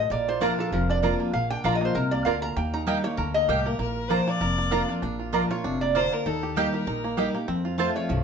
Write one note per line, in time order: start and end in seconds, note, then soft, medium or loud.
0.00 0.11 D#5 medium
0.10 0.51 A#1 medium
0.10 0.69 A#2 medium
0.10 1.19 A#3 medium
0.10 0.28 D5 medium
0.28 0.58 F4 medium
0.28 0.41 C5 medium
0.41 0.70 F3 medium
0.41 0.51 A#3 loud
0.41 0.71 A#3 loud
0.41 0.71 D4 loud
0.41 0.51 F4 loud
0.41 0.71 F4 medium
0.41 1.03 A#4 medium
0.41 0.59 A#4 medium
0.41 0.52 D5 loud
0.41 0.52 A#5 loud
0.59 1.00 F4 medium
0.59 0.73 A4 medium
0.72 1.12 F1 medium
0.72 1.31 F2 loud
0.72 1.17 F3 medium
0.72 0.89 A#4 medium
0.90 1.31 D4 medium
0.90 0.98 D5 loud
1.03 1.32 F3 medium
1.03 1.13 A#3 medium
1.03 1.32 A#3 medium
1.03 1.33 D4 medium
1.03 1.13 F4 medium
1.03 1.33 F4 loud
1.03 1.64 A#4 medium
1.03 1.13 D5 loud
1.03 1.13 A#5 loud
1.20 1.33 A#3 medium
1.33 1.54 A#1 medium
1.33 1.92 A#2 medium
1.33 1.81 A#3 medium
1.33 1.50 F5 medium
1.50 1.92 D4 medium
1.50 1.64 G5 loud
1.64 1.90 A#1 medium
1.64 1.94 F3 medium
1.64 1.74 A#3 medium
1.64 1.94 A#3 medium
1.64 1.94 D4 medium
1.64 1.74 F4 loud
1.64 1.94 F4 loud
1.64 1.95 A#4 medium
1.64 1.75 D5 loud
1.64 1.75 F5 medium
1.64 1.75 A#5 loud
1.75 1.85 D#5 medium
1.81 2.12 A#3 medium
1.85 1.95 C5 medium
1.95 2.21 C2 medium
1.95 2.25 C3 loud
1.95 2.12 A#4 medium
1.95 2.87 A#4 medium
2.11 2.42 A#3 medium
2.11 2.25 D5 medium
2.25 2.52 D2 medium
2.25 2.55 D3 medium
2.25 2.36 A#3 medium
2.25 2.57 F4 medium
2.25 2.36 F4 medium
2.25 2.36 D5 medium
2.25 2.42 F5 medium
2.25 2.36 A#5 medium
2.42 2.56 A#3 medium
2.42 2.56 A#5 loud
2.56 2.97 D#2 medium
2.56 3.15 D#3 medium
2.56 3.04 A#3 medium
2.56 2.73 G5 medium
2.74 3.16 D#4 medium
2.74 2.82 A#5 loud
2.87 3.03 G3 medium
2.87 2.97 A#3 loud
2.87 3.04 A#3 loud
2.87 3.04 D#4 loud
2.87 2.97 G4 loud
2.87 3.02 G4 loud
2.87 3.18 A#4 medium
2.87 2.97 D#5 loud
2.87 2.98 G5 loud
3.04 3.34 A#3 medium
3.04 3.18 D#4 medium
3.04 3.17 G4 medium
3.04 3.33 C#5 loud
3.17 3.44 D2 medium
3.17 3.47 D3 medium
3.17 4.10 A#4 medium
3.34 3.66 A#3 medium
3.34 3.48 D#5 loud
3.48 3.74 C2 medium
3.48 3.78 A2 medium
3.48 3.59 A#3 medium
3.48 3.80 G4 medium
3.48 3.59 G4 medium
3.48 3.68 G4 medium
3.48 3.59 D#5 loud
3.48 3.59 G5 loud
3.66 3.79 A#3 medium
3.66 3.80 A#4 loud
3.79 4.20 A#1 medium
3.79 4.38 A#2 medium
3.79 4.27 A#3 medium
3.79 4.09 A#4 loud
4.08 4.39 F3 medium
4.08 4.20 A#3 medium
4.08 4.40 A#3 medium
4.08 4.40 D4 medium
4.08 4.20 F4 medium
4.08 4.40 F4 loud
4.08 4.41 A#4 medium
4.08 4.13 B4 medium
4.08 4.30 C5 loud
4.08 4.20 D5 loud
4.08 4.21 A#5 loud
4.27 4.58 A#3 medium
4.27 4.89 D5 loud
4.41 4.81 F1 medium
4.41 5.00 F2 medium
4.41 5.33 A#4 medium
4.58 4.89 A#3 medium
4.71 4.88 F3 medium
4.71 4.81 A#3 medium
4.71 4.88 A#3 medium
4.71 4.89 D4 loud
4.71 4.82 F4 medium
4.71 5.16 F4 medium
4.71 4.88 F4 medium
4.71 4.82 D5 medium
4.71 4.82 A#5 loud
4.89 5.82 A#3 medium
4.89 5.03 D4 medium
4.89 5.02 F4 medium
5.02 5.43 A#1 medium
5.02 5.61 A#2 medium
5.02 5.47 D4 medium
5.19 5.49 F4 medium
5.33 5.49 F3 medium
5.33 5.43 A#3 medium
5.33 5.50 A#3 loud
5.33 5.50 D4 medium
5.33 5.43 F4 loud
5.33 5.49 F4 loud
5.33 5.78 A#4 medium
5.33 5.44 D5 loud
5.33 5.44 A#5 loud
5.50 5.64 D4 soft
5.50 5.63 F4 medium
5.50 5.92 F4 medium
5.50 5.79 C#5 medium
5.64 6.05 F1 medium
5.64 5.93 C3 medium
5.64 6.08 D4 medium
5.81 6.11 A#3 medium
5.81 5.94 D5 loud
5.95 6.24 D3 medium
5.95 6.05 A#3 medium
5.95 6.05 F4 medium
5.95 6.26 F4 medium
5.95 6.14 C5 loud
5.95 6.05 D5 medium
5.95 6.05 A#5 medium
6.12 6.26 A#3 medium
6.12 6.27 A#4 loud
6.26 6.66 D#2 medium
6.26 6.84 D#3 medium
6.26 6.70 D#4 medium
6.26 6.56 A4 loud
6.43 6.73 G4 medium
6.56 6.85 G3 medium
6.56 6.66 A#3 medium
6.56 6.86 A#3 loud
6.56 6.86 D#4 loud
6.56 6.75 G4 medium
6.56 6.67 G4 loud
6.56 6.86 G4 loud
6.56 7.01 A#4 medium
6.56 6.67 D#5 loud
6.56 6.67 G5 loud
6.74 7.15 G4 medium
6.74 7.35 A#4 medium
6.87 7.27 A#1 medium
6.87 7.45 A#2 loud
6.87 7.31 D#4 medium
7.04 7.33 A#3 medium
7.17 7.34 G3 medium
7.17 7.27 A#3 medium
7.17 7.34 A#3 medium
7.17 7.34 D#4 medium
7.17 7.48 G4 medium
7.17 7.28 G4 medium
7.17 7.33 G4 loud
7.17 7.28 D#5 medium
7.17 7.28 G5 medium
7.34 7.48 A#3 medium
7.34 7.48 D#4 medium
7.34 7.47 G4 medium
7.48 7.88 F2 medium
7.48 8.07 F2 medium
7.48 7.92 C4 medium
7.65 7.78 F4 medium
7.78 8.08 F3 medium
7.78 8.08 A3 medium
7.78 7.89 C4 medium
7.78 8.08 C4 medium
7.78 7.95 F4 medium
7.78 7.89 F4 loud
7.78 8.08 F4 loud
7.78 7.89 C5 loud
7.78 7.89 A5 loud
7.96 8.24 F4 medium
7.96 8.24 C#5 loud
8.09 8.24 C2 medium
8.09 8.24 G2 medium
8.09 8.24 F3 medium